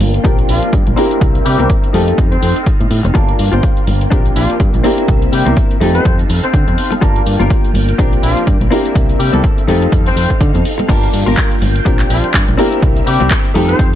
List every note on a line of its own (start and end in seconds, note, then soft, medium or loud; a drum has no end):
0.00 0.18 G1 medium
0.00 0.20 A#3 medium
0.00 1.91 A#3 medium
0.00 0.20 D4 medium
0.00 0.21 F4 medium
0.00 0.24 F4 medium
0.00 0.96 G5 medium
0.00 0.21 A5 medium
0.00 open hi-hat loud
0.00 low conga medium
0.14 closed hi-hat soft
0.14 tambourine medium
0.24 0.42 A#1 medium
0.24 0.93 C4 medium
0.24 0.38 D4 medium
0.24 0.93 D4 medium
0.24 0.97 D4 medium
0.24 0.93 F4 medium
0.24 0.38 G4 medium
0.24 0.93 G4 medium
0.24 0.39 A#4 medium
0.24 kick loud
0.24 closed hi-hat medium
0.38 closed hi-hat soft
0.48 0.58 A#1 medium
0.48 0.71 F3 medium
0.48 0.71 F4 medium
0.48 muted clean electric guitar stroke soft
0.48 open hi-hat loud
0.62 muted fingered electric bass stroke soft
0.62 closed hi-hat soft
0.62 tambourine medium
0.73 0.82 G2 medium
0.73 kick loud
0.73 closed hi-hat medium
0.86 0.94 A#1 loud
0.86 muted clean electric guitar stroke soft
0.86 closed hi-hat soft
0.86 tambourine soft
0.86 low conga loud
0.96 1.89 A#3 medium
0.96 1.45 C4 medium
0.96 1.93 C4 medium
0.96 1.90 D4 medium
0.96 1.46 E4 medium
0.96 1.90 E4 medium
0.96 1.90 G4 medium
0.96 1.46 A#4 loud
0.96 1.93 E5 medium
0.96 open hi-hat loud
0.96 high conga medium
1.11 closed hi-hat soft
1.11 tambourine medium
1.21 1.39 C2 loud
1.21 kick loud
1.21 closed hi-hat medium
1.35 closed hi-hat soft
1.35 tambourine soft
1.46 1.55 C3 medium
1.46 1.68 G3 medium
1.46 1.68 G4 medium
1.46 open hi-hat loud
1.58 1.67 C2 medium
1.58 1.88 C4 medium
1.58 1.89 E4 medium
1.58 1.89 A#4 medium
1.58 closed hi-hat soft
1.58 tambourine medium
1.58 high conga medium
1.58 low conga medium
1.70 kick loud
1.70 closed hi-hat medium
1.83 closed hi-hat soft
1.83 tambourine soft
1.93 2.12 F2 medium
1.93 3.11 A3 medium
1.93 3.11 C4 medium
1.93 2.34 D#4 medium
1.93 3.14 D#4 medium
1.93 3.11 D#4 medium
1.93 2.34 F4 medium
1.93 3.11 G4 loud
1.93 3.14 A4 medium
1.93 2.34 A4 loud
1.93 3.14 F5 medium
1.93 open hi-hat loud
1.93 low conga medium
2.07 closed hi-hat soft
2.07 tambourine medium
2.18 2.36 F2 medium
2.18 kick loud
2.18 closed hi-hat medium
2.32 2.67 C4 medium
2.32 2.67 C5 medium
2.32 closed hi-hat soft
2.41 2.52 F2 medium
2.41 muted clean electric guitar stroke soft
2.41 open hi-hat loud
2.56 closed hi-hat soft
2.56 tambourine medium
2.66 kick loud
2.66 closed hi-hat medium
2.79 2.88 A2 medium
2.79 muted clean electric guitar stroke soft
2.79 closed hi-hat soft
2.79 tambourine soft
2.79 high conga medium
2.91 3.00 A2 medium
2.91 open hi-hat loud
3.03 3.12 F1 loud
3.03 muted clean electric guitar stroke medium
3.03 closed hi-hat soft
3.03 tambourine medium
3.03 high conga medium
3.03 low conga medium
3.14 4.07 A#3 medium
3.14 5.78 A#3 medium
3.14 4.08 D4 medium
3.14 3.33 F4 loud
3.14 4.11 F4 medium
3.14 4.08 F4 medium
3.14 3.34 G4 loud
3.14 3.34 A#4 loud
3.14 4.83 G5 medium
3.14 4.08 A5 medium
3.14 kick loud
3.14 closed hi-hat medium
3.28 closed hi-hat soft
3.28 tambourine soft
3.39 3.49 G2 medium
3.39 open hi-hat loud
3.52 3.60 G1 medium
3.52 3.82 F4 medium
3.52 3.82 G4 medium
3.52 3.83 C5 medium
3.52 closed hi-hat soft
3.52 tambourine medium
3.52 high conga medium
3.52 low conga medium
3.63 kick loud
3.63 closed hi-hat medium
3.77 closed hi-hat soft
3.77 tambourine soft
3.87 4.05 G1 medium
3.87 open hi-hat loud
3.87 low conga medium
4.01 closed hi-hat soft
4.01 tambourine medium
4.10 4.29 A#1 medium
4.10 4.80 C4 medium
4.10 4.25 D4 medium
4.10 4.80 D4 medium
4.10 4.83 D4 medium
4.10 4.80 F4 medium
4.10 4.25 G4 medium
4.10 4.80 G4 medium
4.10 4.26 A#4 medium
4.10 kick loud
4.10 closed hi-hat medium
4.25 closed hi-hat soft
4.25 tambourine soft
4.35 4.45 A#1 medium
4.35 4.58 F3 medium
4.35 4.58 F4 medium
4.35 muted clean electric guitar stroke soft
4.35 open hi-hat loud
4.49 muted fingered electric bass stroke soft
4.49 closed hi-hat soft
4.49 tambourine medium
4.60 4.69 G2 medium
4.60 kick loud
4.60 closed hi-hat medium
4.73 4.81 A#1 loud
4.73 muted clean electric guitar stroke soft
4.73 closed hi-hat soft
4.73 tambourine soft
4.73 low conga medium
4.83 5.77 A#3 medium
4.83 5.32 C4 medium
4.83 5.80 C4 medium
4.83 5.77 D4 medium
4.83 5.33 E4 medium
4.83 5.77 E4 medium
4.83 5.77 G4 medium
4.83 5.33 A#4 loud
4.83 5.80 E5 medium
4.83 open hi-hat loud
4.83 high conga medium
4.98 closed hi-hat soft
4.98 tambourine medium
5.08 5.26 C2 medium
5.08 kick loud
5.08 closed hi-hat medium
5.22 closed hi-hat soft
5.22 tambourine soft
5.33 5.42 C3 medium
5.33 5.55 G3 medium
5.33 5.55 G4 medium
5.33 open hi-hat loud
5.46 5.53 C2 medium
5.46 5.75 C4 medium
5.46 5.76 E4 medium
5.46 5.76 A#4 medium
5.46 closed hi-hat soft
5.46 tambourine medium
5.46 high conga medium
5.46 low conga medium
5.57 kick loud
5.57 closed hi-hat medium
5.57 tambourine medium
5.70 closed hi-hat soft
5.70 tambourine soft
5.80 5.99 F2 loud
5.80 6.98 A3 medium
5.80 6.98 C4 medium
5.80 6.21 D#4 medium
5.80 7.01 D#4 medium
5.80 6.98 D#4 medium
5.80 6.21 F4 medium
5.80 6.98 G4 loud
5.80 7.01 A4 medium
5.80 6.22 A4 loud
5.80 7.01 F5 medium
5.80 open hi-hat loud
5.80 low conga medium
5.95 6.16 C4 medium
5.95 6.16 C5 medium
5.95 closed hi-hat soft
5.95 tambourine medium
6.05 6.23 F2 medium
6.05 kick loud
6.05 closed hi-hat medium
6.19 closed hi-hat soft
6.19 tambourine soft
6.29 6.39 F2 medium
6.29 muted clean electric guitar stroke soft
6.29 open hi-hat loud
6.43 6.92 C4 medium
6.43 6.92 C5 medium
6.43 muted fingered electric bass stroke soft
6.43 closed hi-hat soft
6.43 tambourine medium
6.54 6.63 D3 medium
6.54 kick loud
6.54 closed hi-hat medium
6.67 6.74 F2 loud
6.67 muted clean electric guitar stroke soft
6.67 closed hi-hat soft
6.67 tambourine soft
6.67 high conga medium
6.78 open hi-hat loud
6.91 muted clean electric guitar stroke medium
6.91 closed hi-hat soft
6.91 tambourine medium
6.91 high conga medium
6.91 low conga medium
7.01 7.20 G1 medium
7.01 7.94 A#3 medium
7.01 9.66 A#3 medium
7.01 7.95 D4 medium
7.01 7.21 F4 loud
7.01 7.98 F4 medium
7.01 7.95 F4 medium
7.01 7.21 G4 loud
7.01 7.22 A#4 loud
7.01 8.70 G5 medium
7.01 7.95 A5 medium
7.01 kick loud
7.01 closed hi-hat medium
7.16 closed hi-hat soft
7.16 tambourine soft
7.26 7.36 G2 medium
7.26 open hi-hat loud
7.39 7.47 G1 loud
7.39 7.69 F4 medium
7.39 7.70 G4 medium
7.39 7.70 A#4 medium
7.39 closed hi-hat soft
7.39 tambourine medium
7.39 high conga medium
7.39 low conga medium
7.50 kick loud
7.50 closed hi-hat medium
7.50 tambourine medium
7.64 closed hi-hat soft
7.64 tambourine soft
7.74 7.92 G1 medium
7.74 open hi-hat loud
7.74 low conga medium
7.88 closed hi-hat soft
7.88 tambourine medium
7.98 8.16 A#1 medium
7.98 8.67 C4 medium
7.98 8.12 D4 medium
7.98 8.71 D4 medium
7.98 8.67 D4 medium
7.98 8.67 F4 medium
7.98 8.13 G4 medium
7.98 8.68 G4 medium
7.98 8.13 A#4 medium
7.98 kick loud
7.98 closed hi-hat medium
8.12 closed hi-hat soft
8.12 tambourine soft
8.22 8.32 A#1 medium
8.22 8.45 F3 medium
8.22 8.45 F4 medium
8.22 muted clean electric guitar stroke soft
8.22 open hi-hat loud
8.37 muted fingered electric bass stroke soft
8.37 closed hi-hat soft
8.37 tambourine medium
8.47 8.56 G2 medium
8.47 kick loud
8.47 closed hi-hat medium
8.60 8.68 A#1 loud
8.60 muted clean electric guitar stroke soft
8.60 closed hi-hat soft
8.60 tambourine soft
8.60 low conga medium
8.70 9.64 A#3 medium
8.70 9.19 C4 medium
8.70 9.67 C4 medium
8.70 9.64 D4 medium
8.70 9.20 E4 medium
8.70 9.64 E4 medium
8.70 9.65 G4 medium
8.70 9.20 A#4 loud
8.70 9.67 E5 medium
8.70 open hi-hat loud
8.70 high conga medium
8.85 closed hi-hat soft
8.85 tambourine medium
8.95 9.13 C2 loud
8.95 kick loud
8.95 closed hi-hat loud
9.09 closed hi-hat soft
9.09 tambourine soft
9.19 9.29 C3 medium
9.19 9.42 G3 medium
9.19 9.42 G4 medium
9.19 open hi-hat loud
9.33 9.41 C2 medium
9.33 9.63 C4 medium
9.33 9.63 E4 medium
9.33 9.63 A4 medium
9.33 closed hi-hat soft
9.33 tambourine medium
9.33 high conga medium
9.33 low conga medium
9.44 kick loud
9.44 closed hi-hat medium
9.44 tambourine medium
9.57 closed hi-hat soft
9.57 tambourine soft
9.67 9.86 F2 medium
9.67 10.85 A3 medium
9.67 10.85 C4 medium
9.67 10.08 D#4 medium
9.67 10.88 D#4 medium
9.67 10.85 D#4 medium
9.67 10.08 F4 medium
9.67 10.85 G4 loud
9.67 10.88 A4 medium
9.67 10.09 A4 loud
9.67 10.88 F5 medium
9.67 open hi-hat loud
9.67 low conga medium
9.82 closed hi-hat soft
9.82 tambourine medium
9.92 10.10 F2 medium
9.92 kick loud
9.92 closed hi-hat loud
10.06 10.41 C4 medium
10.06 10.41 C5 medium
10.06 open hi-hat medium
10.06 tambourine soft
10.16 10.26 F2 medium
10.16 muted clean electric guitar stroke soft
10.16 open hi-hat loud
10.30 muted fingered electric bass stroke soft
10.30 kick medium
10.30 closed hi-hat soft
10.30 tambourine medium
10.41 10.50 D3 medium
10.41 kick loud
10.41 closed hi-hat medium
10.41 tambourine medium
10.54 10.62 F2 loud
10.54 muted clean electric guitar stroke soft
10.54 closed hi-hat soft
10.54 tambourine soft
10.54 high conga medium
10.65 open hi-hat loud
10.78 muted clean electric guitar stroke medium
10.78 closed hi-hat soft
10.78 tambourine medium
10.78 high conga medium
10.78 low conga medium
10.88 11.07 G1 medium
10.88 11.81 A#3 medium
10.88 11.85 A#3 medium
10.88 11.82 D4 medium
10.88 11.08 F4 loud
10.88 11.85 F4 medium
10.88 11.82 F4 medium
10.88 11.08 G4 loud
10.88 11.09 A#4 loud
10.88 12.57 G5 medium
10.88 11.82 A5 medium
10.88 kick loud
10.88 closed hi-hat medium
10.88 crash medium
11.03 closed hi-hat soft
11.03 tambourine soft
11.13 11.23 G2 medium
11.13 open hi-hat loud
11.26 11.34 G1 medium
11.26 11.56 F4 medium
11.26 11.57 G4 medium
11.26 11.57 A#4 medium
11.26 closed hi-hat soft
11.26 tambourine medium
11.26 high conga loud
11.26 low conga loud
11.37 kick loud
11.37 clap loud
11.37 closed hi-hat medium
11.51 closed hi-hat soft
11.51 tambourine soft
11.62 11.79 G1 medium
11.62 open hi-hat loud
11.62 low conga loud
11.76 closed hi-hat soft
11.76 tambourine medium
11.85 12.03 A#1 medium
11.85 12.54 C4 medium
11.85 11.99 D4 medium
11.85 12.54 D4 medium
11.85 12.58 D4 medium
11.85 12.54 F4 medium
11.85 12.00 G4 medium
11.85 12.55 G4 medium
11.85 13.54 A#4 medium
11.85 12.00 A#4 medium
11.85 kick loud
11.85 closed hi-hat loud
11.99 clap soft
11.99 closed hi-hat soft
11.99 tambourine soft
12.09 12.19 A#1 medium
12.09 12.32 F3 medium
12.09 12.32 F4 medium
12.09 muted clean electric guitar stroke soft
12.09 open hi-hat loud
12.24 muted fingered electric bass stroke soft
12.24 closed hi-hat soft
12.24 tambourine medium
12.34 12.44 G2 medium
12.34 kick loud
12.34 clap loud
12.34 closed hi-hat loud
12.47 12.55 A#1 loud
12.47 muted clean electric guitar stroke soft
12.47 closed hi-hat soft
12.47 tambourine soft
12.47 low conga medium
12.57 13.51 A#3 medium
12.57 13.06 C4 medium
12.57 13.54 C4 medium
12.57 13.51 D4 medium
12.57 13.07 E4 medium
12.57 13.51 E4 medium
12.57 13.51 G4 medium
12.57 13.07 A#4 loud
12.57 13.54 E5 medium
12.57 open hi-hat loud
12.57 high conga medium
12.72 closed hi-hat soft
12.72 tambourine medium
12.82 13.00 C2 loud
12.82 kick loud
12.82 closed hi-hat medium
12.96 closed hi-hat soft
12.96 tambourine soft
13.07 13.16 C3 medium
13.07 13.29 G3 medium
13.07 13.29 G4 medium
13.07 open hi-hat loud
13.20 13.28 C2 medium
13.20 13.50 C4 medium
13.20 13.50 E4 medium
13.20 13.51 G4 medium
13.20 closed hi-hat soft
13.20 tambourine medium
13.20 high conga medium
13.20 low conga medium
13.31 kick loud
13.31 clap loud
13.31 closed hi-hat medium
13.45 closed hi-hat soft
13.45 tambourine soft
13.54 13.73 F2 medium
13.54 13.95 A3 medium
13.54 13.95 C4 medium
13.54 13.95 D#4 loud
13.54 13.95 D#4 medium
13.54 13.95 F4 medium
13.54 13.95 G4 loud
13.54 13.95 A4 medium
13.54 13.95 A4 loud
13.54 13.95 F5 medium
13.54 open hi-hat loud
13.54 low conga medium
13.69 13.90 C4 medium
13.69 13.90 C5 medium
13.69 closed hi-hat soft
13.69 tambourine medium
13.79 13.95 F2 medium
13.79 kick loud
13.79 closed hi-hat medium